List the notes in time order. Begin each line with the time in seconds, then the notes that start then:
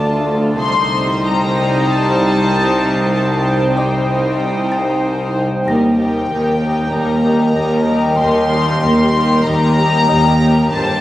Already playing: D2 D3 D4 F4 A4 D5 A5
0.60 C2 G3 D#4 C5 G5 C6
1.24 A#5
1.88 A5
3.13 A5
3.75 G3 D#4 C5 D5 G5 D6
4.72 G5 A6
5.65 D#2 G3 D#4 G4 A#4 D#5 G5 A#6
5.97 G3 D#4 G4 A#4 G5
6.28 D#2 G3 D#4 G4 A#4
6.61 G3 D#4 G4 A#4
6.92 D#2 G3 D#4 G4 A#4 A#5
7.23 G3 D#4 G4 A#4
7.54 D#2 G3 D#4 G4 A#4
7.86 G3 D#4 G4 A#4
8.18 D#2 G3 D#4 G4 A#4 C6
8.50 G3 D#4 G4 A#4
8.81 D#2 G3 D#4 G4 A#4
9.13 G3 D#4 G4 A#4
9.45 D#2 G3 D#4 G4 A#4 A#5
9.76 G3 D#4 G4 A#4
10.07 D#2 G3 D#4 G4 A#4 D#5 D#6
10.39 G3 D#4 G4 A#4
10.71 G1 G2 D3 G3 G4 C5 G5 A5